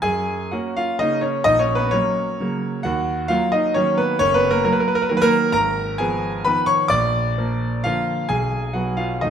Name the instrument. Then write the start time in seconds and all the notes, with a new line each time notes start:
grand piano
0.02 F#2 G#4 G#5
0.51 A#3 C#4 F#4 F#5
0.77 F4 F5
0.99 C#3 A#3 C#4 D#4 D#5
1.21 C#4 C#5
1.44 A#1 D#4 D#5
1.59 C#4 C#5
1.75 B3 B4
1.91 F#3 A#3 C#4 C#5
2.40 C#3 F#3 A#3
2.83 D#2 F#4 F#5
3.28 F#3 A#3 F4 F5
3.52 D#4 D#5
3.74 D#3 F#3 A#3 C#4 C#5
3.98 B3 B4
4.19 F#1 C#4 C#5
4.34 B3 B4
4.51 A#3 A#4
4.65 F#3 A#3 A#4
4.72 B4
4.80 A#4
4.88 B4
4.95 A#4
5.02 B4
5.09 D#3 F#3 A#3 A#4
5.17 B4
5.22 A#3 A#4
5.52 G#1 A#4 A#5
5.98 F3 B3 G#4 G#5
6.45 D#3 F3 B3 B4 B5
6.66 C#5 C#6
6.88 A#1 D5 D6
7.38 F3 A#3
7.84 D3 F3 A#3 F4 F5
8.29 B1 G#4 G#5
8.73 F#3 B3 F#4 F#5
8.97 F4 F5
9.21 B1 D#3 F#3 A3 D#4 D#5